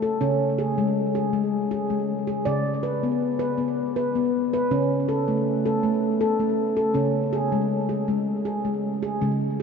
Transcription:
0.00 0.18 C#3 medium
0.00 0.21 A4 medium
0.21 2.42 C#3 medium
0.21 0.59 C#4 medium
0.59 0.78 G#4 medium
0.78 1.16 G#3 medium
1.15 1.34 G#4 medium
1.33 1.71 G#3 medium
1.71 1.90 G#4 medium
1.90 2.28 G#3 medium
2.27 2.46 G#4 medium
2.45 4.67 C#3 medium
2.45 2.83 D5 medium
2.83 3.03 B4 medium
3.03 3.41 B3 medium
3.39 3.58 B4 medium
3.58 3.96 B3 medium
3.96 4.15 B4 medium
4.15 4.53 B3 medium
4.53 4.71 B4 medium
4.71 6.92 C#3 medium
4.71 5.09 C#4 medium
5.09 5.28 A4 medium
5.28 5.65 A3 medium
5.66 5.84 A4 medium
5.83 6.21 A3 medium
6.21 6.40 A4 medium
6.40 6.78 A3 medium
6.77 6.96 A4 medium
6.94 9.17 C#3 medium
6.94 7.33 C#4 medium
7.33 7.53 G#4 medium
7.52 7.90 G#3 medium
7.89 8.08 G#4 medium
8.08 8.46 G#3 medium
8.45 8.65 G#4 medium
8.65 9.03 G#3 medium
9.03 9.21 G#4 medium
9.21 9.62 C#3 medium
9.21 9.59 G#3 medium

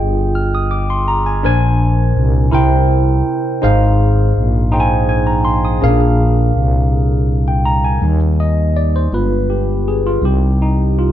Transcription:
0.00 1.46 G1 medium
0.00 0.21 F4 medium
0.00 0.21 G#4 medium
0.00 0.22 D#5 medium
0.00 0.22 G5 medium
0.35 0.52 F6 medium
0.55 0.71 D#6 medium
0.71 0.89 D6 medium
0.90 1.07 C6 medium
1.08 1.25 A#5 medium
1.26 1.45 G#5 medium
1.43 2.13 A#1 loud
1.43 2.50 A#2 medium
1.43 2.39 D4 medium
1.43 2.40 A#4 medium
1.43 2.40 C5 medium
1.43 2.40 G#5 medium
2.17 2.51 C2 medium
2.51 3.23 C2 medium
2.51 3.59 C3 medium
2.51 3.48 E4 medium
2.51 3.48 A#4 medium
2.51 3.49 C5 medium
2.51 3.50 G5 medium
3.62 4.33 G#1 loud
3.62 4.69 G#2 medium
3.62 4.58 D#4 medium
3.62 4.58 G#4 medium
3.62 4.59 C5 medium
3.62 4.59 F5 medium
4.37 5.79 A#1 medium
4.72 5.68 D#4 medium
4.72 5.68 G#4 medium
4.72 5.68 C5 medium
4.72 4.80 G5 medium
4.80 5.08 G#5 medium
5.09 5.27 G#5 medium
5.27 5.45 A#5 medium
5.45 5.63 C6 medium
5.65 5.99 D#6 medium
5.81 6.52 A#1 loud
5.81 6.88 A#2 medium
5.81 5.88 C#4 medium
5.81 6.78 G#4 medium
5.81 6.79 A#4 medium
5.81 6.79 F5 medium
5.88 6.81 D4 medium
6.56 7.98 C2 medium
7.48 7.65 G5 medium
7.66 7.83 A#5 medium
7.84 8.19 G#5 medium
8.01 9.08 D#2 loud
8.01 9.08 G3 soft
8.01 9.08 A#3 soft
8.01 9.08 D#4 soft
8.40 8.77 D#5 medium
8.76 8.95 D5 medium
8.96 9.14 C5 medium
9.12 10.18 G1 medium
9.12 10.18 G#3 soft
9.12 10.18 B3 soft
9.12 10.05 F4 soft
9.12 9.47 B4 medium
9.50 9.83 G4 medium
9.88 10.04 G#4 medium
10.07 10.24 F4 medium
10.22 11.12 C2 loud
10.22 11.12 G3 soft
10.22 11.12 C4 soft
10.22 10.61 D#4 soft
10.22 10.58 G4 medium
10.62 10.98 D#4 medium
10.99 11.12 F4 medium

